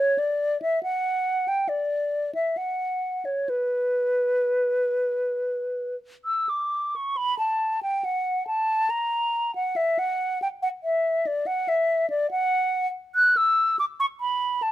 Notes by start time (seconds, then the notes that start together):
Already playing: C#5
0.18 D5
0.62 E5
0.83 F#5
1.48 G5
1.69 D5
2.35 E5
2.57 F#5
3.25 C#5
3.49 B4
6.25 E6
6.49 D6
6.96 C#6
7.17 B5
7.39 A5
7.83 G5
8.04 F#5
8.47 A5
8.90 A#5
9.55 F#5
9.76 E5
9.99 F#5
10.42 G5
10.62 F#5
10.83 E5
11.27 D5
11.47 F#5
11.68 E5
12.10 D5
12.31 F#5
13.15 F#6
13.37 E6
13.79 D6
14.00 C#6
14.21 B5
14.62 A5